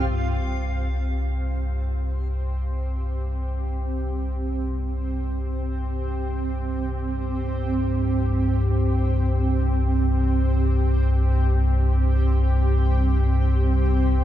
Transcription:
Already playing: C4 F4 G4 F5
0.11 C2 G2
3.42 G5

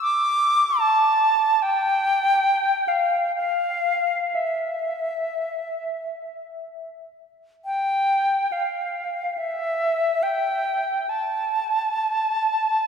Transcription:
0.02 D6
0.80 A5
1.62 G5
2.88 F5
3.36 F5
4.35 E5
7.65 G5
8.52 F5
9.37 E5
10.23 G5
11.09 A5

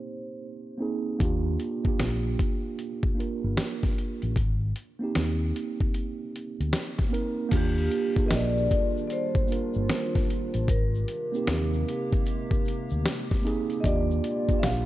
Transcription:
Already playing: A#3 C4 D#4 G4 C5
0.78 A#3 C4 D#4
0.82 G#4
1.19 D#2 A#3 D4 F4, kick, closed hi-hat
1.23 G4
1.60 closed hi-hat
1.84 A#3 D4 F4, kick
1.88 G4
2.00 A#1, snare, closed hi-hat
2.39 kick, closed hi-hat
2.79 closed hi-hat
3.03 kick
3.15 A#3 D4 F4
3.20 A#4, closed hi-hat
3.44 G1
3.57 snare, closed hi-hat
3.83 kick, snare
3.98 closed hi-hat
4.22 A1, closed hi-hat
4.36 G#1, kick, closed hi-hat
4.76 closed hi-hat
4.99 A#3 C4 D#4
5.04 G4
5.15 D#2, snare, closed hi-hat
5.56 closed hi-hat
5.80 kick
5.94 closed hi-hat
6.36 closed hi-hat
6.60 D2, closed hi-hat
6.73 snare, closed hi-hat
6.99 kick, snare
7.09 A#3 C4 D#4
7.13 A#4, closed hi-hat
7.49 D#2 D#3 G3 A#3 D4 F4, kick, closed hi-hat, crash, shaker
7.53 F4 G4
7.78 shaker
7.91 closed hi-hat
8.15 A#3 D4 F4, kick, shaker
8.20 G#4
8.26 A#4 D#5
8.31 A#1, snare, closed hi-hat, shaker
8.35 D5
8.57 shaker
8.71 kick, closed hi-hat
8.97 shaker
9.07 D5, closed hi-hat, shaker
9.13 C5
9.35 kick, shaker
9.48 A#3 D4 F4 A#4, shaker
9.52 closed hi-hat
9.74 G1, shaker
9.89 snare, closed hi-hat, shaker
10.15 kick, snare, shaker
10.30 closed hi-hat
10.54 A1, closed hi-hat, shaker
10.68 G#1 C3 G#3 A#3 G4 A#4, kick, closed hi-hat, shaker
10.95 shaker
11.08 closed hi-hat
11.32 A#3 C4 D#4, shaker
11.36 G4
11.47 D#2, snare, closed hi-hat, shaker
11.73 shaker
11.89 closed hi-hat
12.13 kick, shaker
12.26 closed hi-hat, shaker
12.51 kick, shaker
12.65 closed hi-hat, shaker
12.90 D2, shaker
13.06 snare, closed hi-hat, shaker
13.31 kick, snare, shaker
13.42 A#3 C4 D#4
13.46 G#4, closed hi-hat
13.70 closed hi-hat, shaker
13.80 D3 G3 A#3 D4 F4 D#5, kick
13.84 D#2 F4 G4 D5, closed hi-hat, shaker
14.11 shaker
14.24 closed hi-hat
14.48 A#3 D4 F4, kick, shaker
14.53 G4
14.59 E5
14.63 A#1 F5, snare, closed hi-hat, shaker

